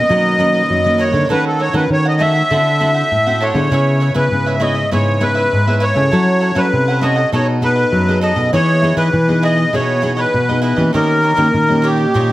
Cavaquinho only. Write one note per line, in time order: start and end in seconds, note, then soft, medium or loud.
0.09 0.37 D#4 medium
0.09 0.38 A#4 medium
0.09 0.39 B4 medium
0.09 0.39 D#5 medium
0.39 0.48 D#4 medium
0.39 0.48 A#4 medium
0.39 0.49 B4 medium
0.39 0.49 D#5 medium
0.53 0.84 A#4 soft
0.53 0.83 B4 soft
0.53 0.83 D#5 medium
0.84 0.98 A#4 soft
0.84 0.98 B4 soft
0.84 0.98 D#5 medium
0.98 1.13 D#4 medium
0.98 1.13 A#4 medium
0.98 1.12 B4 medium
0.98 1.11 D#5 medium
1.13 1.29 A#4 soft
1.13 1.28 B4 soft
1.13 1.28 D#5 soft
1.29 1.57 D#4 medium
1.29 1.58 A4 medium
1.29 1.59 C#5 medium
1.29 1.60 F#5 medium
1.59 1.72 D#4 soft
1.59 1.72 A4 medium
1.59 1.73 C#5 medium
1.59 1.73 F#5 medium
1.73 1.83 D#4 medium
1.73 1.83 A4 medium
1.73 1.84 C#5 medium
1.73 1.84 F#5 medium
2.05 2.18 A4 soft
2.05 2.19 C#5 soft
2.05 2.19 F#5 soft
2.19 2.34 D#4 medium
2.19 2.34 A4 medium
2.19 2.34 C#5 medium
2.19 2.32 F#5 medium
2.33 2.50 A4 soft
2.33 2.49 C#5 soft
2.33 2.48 F#5 medium
2.50 2.78 D4 medium
2.50 2.79 A4 medium
2.50 2.79 C5 medium
2.50 2.80 F#5 medium
2.80 2.89 D4 medium
2.80 2.89 A4 medium
2.80 2.90 C5 medium
2.80 2.90 F#5 medium
2.94 3.25 A4 soft
2.94 3.25 C5 soft
2.94 3.24 F#5 soft
3.26 3.40 A4 soft
3.26 3.41 C5 soft
3.26 3.40 F#5 medium
3.40 3.55 D4 medium
3.40 3.55 A4 medium
3.40 3.55 C5 medium
3.40 3.54 F#5 medium
3.55 3.71 A4 soft
3.55 3.70 C5 soft
3.55 3.70 F#5 soft
3.71 3.99 E4 medium
3.71 4.00 B4 medium
3.71 4.00 C#5 medium
3.71 4.01 E5 medium
4.00 4.13 E4 medium
4.00 4.13 B4 medium
4.00 4.14 C#5 medium
4.00 4.14 E5 medium
4.14 4.24 E4 medium
4.14 4.25 B4 medium
4.14 4.25 C#5 medium
4.14 4.25 E5 medium
4.46 4.59 B4 soft
4.46 4.60 C#5 soft
4.46 4.60 E5 soft
4.60 4.75 E4 medium
4.60 4.75 B4 medium
4.60 4.74 C#5 medium
4.60 4.73 E5 medium
4.75 4.91 B4 soft
4.75 4.90 C#5 soft
4.75 4.90 E5 medium
4.91 5.19 E4 medium
4.91 5.20 B4 medium
4.91 5.20 C#5 medium
4.91 5.21 E5 medium
5.21 5.30 E4 medium
5.21 5.30 B4 medium
5.21 5.31 C#5 medium
5.21 5.31 E5 medium
5.35 5.66 B4 soft
5.35 5.65 C#5 soft
5.35 5.65 E5 medium
5.67 5.80 B4 soft
5.67 5.81 C#5 soft
5.67 5.81 E5 medium
5.80 5.95 E4 medium
5.80 5.96 B4 medium
5.80 5.94 C#5 medium
5.80 5.93 E5 medium
5.95 6.11 B4 soft
5.95 6.10 C#5 soft
5.95 6.10 E5 soft
6.12 6.39 E4 medium
6.12 6.40 A4 medium
6.12 6.41 C#5 medium
6.12 6.41 F#5 medium
6.40 6.54 E4 soft
6.40 6.55 A4 medium
6.40 6.55 C#5 medium
6.40 6.55 F#5 medium
6.55 6.65 E4 medium
6.55 6.66 A4 medium
6.55 6.66 C#5 medium
6.55 6.66 F#5 medium
6.88 7.01 A4 soft
6.88 7.02 C#5 soft
6.88 7.02 F#5 soft
7.01 7.16 E4 medium
7.01 7.16 A4 medium
7.01 7.16 C#5 medium
7.01 7.14 F#5 medium
7.16 7.32 A4 soft
7.16 7.31 C#5 soft
7.16 7.30 F#5 soft
7.32 7.61 D#4 medium
7.32 7.61 A4 medium
7.32 7.62 B4 medium
7.32 7.62 D#5 medium
7.62 7.71 D#4 medium
7.62 7.72 A4 medium
7.62 7.72 B4 medium
7.62 7.72 D#5 medium
7.76 8.07 A4 soft
7.76 8.06 B4 soft
7.76 8.06 D#5 soft
8.08 8.21 A4 soft
8.08 8.22 B4 soft
8.08 8.22 D#5 soft
8.21 8.36 D#4 medium
8.21 8.37 A4 medium
8.21 8.36 B4 medium
8.21 8.35 D#5 medium
8.36 8.52 A4 soft
8.36 8.51 B4 soft
8.36 8.51 D#5 medium
8.53 8.81 E4 medium
8.53 8.82 G#4 medium
8.53 8.82 B4 medium
8.53 8.83 D#5 medium
8.82 8.96 E4 soft
8.82 8.96 G#4 medium
8.82 8.97 B4 medium
8.82 8.97 D#5 medium
8.97 9.06 E4 medium
8.97 9.07 G#4 medium
8.97 9.07 B4 medium
8.97 9.07 D#5 medium
9.29 9.42 G#4 soft
9.29 9.43 B4 soft
9.29 9.42 D#5 soft
9.43 9.57 E4 medium
9.43 9.57 G#4 medium
9.43 9.56 B4 medium
9.43 9.55 D#5 medium
9.56 9.72 G#4 soft
9.56 9.72 B4 medium
9.56 9.71 D#5 medium
9.73 10.00 E4 medium
9.73 10.01 G#4 medium
9.73 10.02 B4 medium
9.73 10.02 D#5 medium
10.02 10.12 E4 medium
10.02 10.12 G#4 medium
10.02 10.12 B4 medium
10.02 10.12 D#5 medium
10.17 10.48 G#4 soft
10.17 10.47 B4 soft
10.17 10.46 D#5 medium
10.49 10.61 G#4 soft
10.49 10.62 B4 medium
10.49 10.63 D#5 medium
10.62 10.76 E4 medium
10.62 10.77 G#4 medium
10.62 10.76 B4 medium
10.62 10.75 D#5 medium
10.76 10.93 G#4 soft
10.76 10.92 B4 soft
10.76 10.91 D#5 soft
10.93 11.21 D#4 medium
10.93 11.22 G4 medium
10.93 11.23 C#5 medium
10.93 11.23 D#5 medium
11.22 11.35 D#4 soft
11.22 11.36 G4 medium
11.22 11.36 C#5 medium
11.22 11.37 D#5 medium
11.37 11.47 D#4 medium
11.37 11.47 G4 medium
11.37 11.47 C#5 medium
11.37 11.47 D#5 medium
11.69 11.82 G4 soft
11.69 11.83 C#5 soft
11.69 11.83 D#5 soft
11.82 11.97 D#4 medium
11.82 11.97 G4 medium
11.82 11.97 C#5 medium
11.82 11.95 D#5 medium
11.97 12.13 G4 soft
11.97 12.12 C#5 soft
11.97 12.12 D#5 soft
12.14 12.32 D#4 medium
12.14 12.32 G4 medium
12.14 12.32 C#5 medium
12.14 12.32 D#5 medium